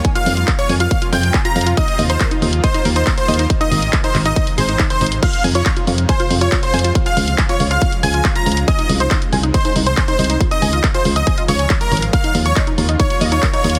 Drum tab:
CC |--------------------------------|--------------------------------|--------------------------------|x-------------------------------|
HH |x-x-o-x-x-x-o-x-x-x-o-x-x-x-oxx-|x-x-o-x-x-x-o-x-x-x-o-x-x-x-oxx-|x-x-o-x-x-x-o-x-x-x-o-x-x-x-oxx-|x-x-o-x-x-x-o-x-x-x-o-x-x-x-oxx-|
CP |--------x---------------x-------|--------x---------------x-------|--------x---x-----------x-------|--------x---------------x-------|
BD |o-------o-------o-------o-------|o-------o-------o-------o-------|o-------o-------o-------o-------|o-------o-------o-------o-------|

CC |--------------------------------|--------------------------------|--------------------------------|--------------------------------|
HH |x-x-o-x-x-x-o-x-x-x-o-x-x-x-oxx-|x-x-o-x-x-x-o-x-x-x-o-x-x-x-oxx-|x-x-o-x-x-x-o-x-x-x-o-x-x-x-oxx-|x-x-o-x-x-x-o-x-x-x-o-x-x-x-oxx-|
CP |--------x---------------x-------|--------x---------------x-------|--------x---------------x-------|--------x---------------x-------|
BD |o-------o-------o-------o-------|o-------o-------o-------o-------|o-------o-------o-------o-------|o-------o-------o-------o-------|